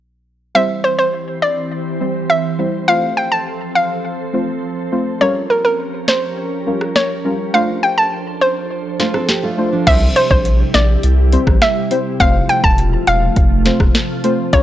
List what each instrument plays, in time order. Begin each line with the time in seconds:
0.55 ambient pad E3 C4 G4 C5, synth stab G3 C4 E4 C5, synth pluck E5
0.84 synth pluck C5
0.99 synth pluck C5
1.42 synth pluck D5
2.00 synth stab G3 C4 E4 C5
2.30 synth pluck E5
2.58 synth stab G3 C4 E4 C5
2.88 ambient pad F3 C4 A4, synth stab A3 C4 F4 C5, synth pluck F5
3.17 synth pluck G5
3.32 synth pluck A5
3.75 synth pluck F5
4.33 synth stab A3 C4 F4 C5
4.92 synth stab A3 C4 F4 C5
5.21 ambient pad F3 C#4 G4 A#4, synth stab G3 C#4 F4 A#4, synth pluck C#5
5.50 synth pluck A#4
5.65 synth pluck A#4
6.08 synth pluck C5, snare
6.66 synth stab G3 C#4 F4 A#4
6.81 cross-stick
6.96 synth pluck C#5, snare
7.25 synth stab G3 C#4 F4 A#4
7.54 ambient pad F3 D4 A4 C5, synth stab A3 D4 F4 C5, synth pluck F5
7.83 synth pluck G5
7.98 synth pluck A5
8.41 synth pluck C5
8.99 synth stab A3 D4 F4 C5, nylon-string guitar A3 F4, snare
9.14 nylon-string guitar C4 A4, cross-stick
9.29 nylon-string guitar G4, snare
9.43 nylon-string guitar A3 F4
9.58 synth stab A3 D4 F4 C5
9.72 nylon-string guitar F3 D4
9.87 sub bass C2, ambient pad C3 G3 E4 G4, synth stab G3 C4 E4 C5, synth pluck E5, kick, closed hi-hat, crash
10.16 synth pluck C5, closed hi-hat
10.31 sub bass A#1, synth pluck C5, kick
10.45 closed hi-hat
10.74 sub bass A#1, synth pluck D5, snare, closed hi-hat
11.03 sub bass C2, closed hi-hat
11.32 synth stab G3 C4 E4 C5, closed hi-hat
11.47 sub bass A1, kick, cross-stick
11.62 synth pluck E5, snare, closed hi-hat
11.91 synth stab G3 C4 E4 C5, closed hi-hat
12.20 sub bass F1, ambient pad F3 A3 F4, synth stab A3 C4 F4 C5, synth pluck F5, kick, closed hi-hat
12.49 synth pluck G5, closed hi-hat
12.64 sub bass E1, synth pluck A5, kick
12.78 closed hi-hat
13.07 sub bass E1, synth pluck F5, closed hi-hat
13.36 sub bass F1, kick, closed hi-hat
13.65 synth stab A3 C4 F4 C5, snare, closed hi-hat
13.80 sub bass E1, kick, cross-stick
13.95 snare, closed hi-hat
14.24 synth stab A3 C4 F4 C5, closed hi-hat
14.53 sub bass A#1, ambient pad C#3 G3 A#3 F4, synth stab G3 C#4 F4 A#4, synth pluck C#5, kick, closed hi-hat